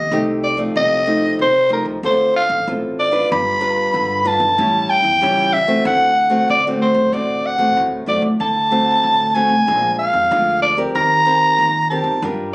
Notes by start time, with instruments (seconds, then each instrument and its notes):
Already playing: soprano saxophone D#5
0.11 upright bass C2, nylon-string guitar C3 A3 D#4 G4
0.44 soprano saxophone D5
0.57 nylon-string guitar F3 A3 D#4
0.76 upright bass C2, nylon-string guitar C3, soprano saxophone D#5
1.06 nylon-string guitar F3 A3 D#4
1.39 upright bass C3, nylon-string guitar C3, soprano saxophone C5
1.69 nylon-string guitar F3 A3 D#4, soprano saxophone A#4
1.85 upright bass C2
2.03 upright bass D2, nylon-string guitar D3 C4 F4 A4, soprano saxophone C5
2.36 soprano saxophone F5
2.49 upright bass A1
2.67 upright bass A1, nylon-string guitar A2 C4 F4 A4
3.00 soprano saxophone D5
3.11 nylon-string guitar D4 F4 B4
3.30 upright bass G1, nylon-string guitar G3, soprano saxophone B5
3.61 nylon-string guitar D4 F4 B4
3.93 upright bass G2, nylon-string guitar D3
4.20 soprano saxophone B5
4.25 nylon-string guitar D4 F4 B4, soprano saxophone A5
4.40 upright bass G1
4.58 upright bass A1, nylon-string guitar A2 G3 C#4 E4
4.89 soprano saxophone G5
5.04 upright bass E2
5.21 upright bass C#2, nylon-string guitar E3 G3 C#4 E4
5.53 soprano saxophone E5
5.68 nylon-string guitar A3 C4 F#4
5.85 upright bass D2, nylon-string guitar D3, soprano saxophone F#5
6.30 nylon-string guitar A3 C4 F#4
6.49 nylon-string guitar A2, upright bass D3, soprano saxophone D5
6.67 nylon-string guitar A3 C4 F#4
6.82 soprano saxophone C5
6.94 upright bass D2
7.12 upright bass A1, nylon-string guitar D3 A3 C4 F#4, soprano saxophone D5
7.46 soprano saxophone F#5
7.58 upright bass A1, nylon-string guitar A3 C4 F#4
7.77 upright bass D2, nylon-string guitar A2
8.06 upright bass F#2, nylon-string guitar A3 C4 F#4, soprano saxophone D5
8.22 upright bass D2
8.40 upright bass D2, nylon-string guitar D3, soprano saxophone A5
8.71 nylon-string guitar A3 C4 F#4
9.03 nylon-string guitar A2, upright bass D3
9.35 nylon-string guitar A3 C4 F#4, soprano saxophone G#5
9.49 upright bass C2
9.67 upright bass A#1, nylon-string guitar A#2 G#3 D4 F4
9.99 soprano saxophone F5
10.14 upright bass F2
10.31 upright bass D2, nylon-string guitar F3 G#3 D4 F4
10.62 soprano saxophone D5
10.77 nylon-string guitar C4 G4 A#4
10.95 upright bass D#2, nylon-string guitar D#3, soprano saxophone A#5
11.26 nylon-string guitar C4 G4 A#4
11.58 nylon-string guitar A#2, upright bass D#3
11.90 nylon-string guitar C4 G4 A#4, soprano saxophone A5
12.04 upright bass D#2
12.22 upright bass G2, nylon-string guitar G3 D4 F4 A#4